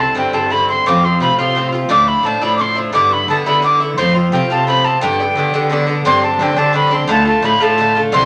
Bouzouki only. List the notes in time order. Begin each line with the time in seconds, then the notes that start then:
Already playing: E4
0.00 D3 C4
0.15 G2 D3 C4 E4
0.33 G2 D3 C4 E4
0.50 G2 D3 C4 E4
0.69 D3 C4 E4
0.86 A2 F3 C4 F4
1.03 F3 C4 F4
1.20 A2 F3 C4 F4
1.39 A2 F3 C4 F4
1.55 A2 F3 C4 F4
1.72 F3 C4 F4
1.89 A2 F3 D4 E4
2.07 F3 D4 E4
2.23 A2 F3 D4 E4
2.42 A2 F3 D4 E4
2.58 A2 F3 D4 E4
2.75 F3 D4 E4
2.93 G2 D3 B3 E4
3.10 D3 B3 E4
3.28 G2 D3 B3 E4
3.46 G2 D3 B3 E4
3.62 G2 D3 B3 E4
3.80 D3 B3 E4
3.98 A2 F3 C4 F4
4.14 F3 C4 F4
4.32 A2 F3 C4 F4
4.50 A2 F3 C4 F4
4.67 A2 F3 C4 F4
4.84 F3 C4 F4
5.01 G2 D3 B3 D4
5.20 D3 B3 D4
5.35 G2 D3 B3 D4
5.54 G2 D3 B3 D4
5.70 G2 D3 B3 D4
5.87 D3 B3 D4
6.05 G2 D3 C4 D4
6.21 D3 C4 D4
6.39 G2 D3 C4 D4
6.57 G2 D3 C4 D4
6.73 G2 D3 C4 D4
6.91 D3 C4 D4
7.07 A2 D3 A3 F4
7.25 D3 A3 F4
7.42 A2 D3 A3 F4
7.60 A2 D3 A3 F4
7.78 A2 D3 A3 F4
7.95 D3 A3 F4
8.12 G2 D3 C4 E4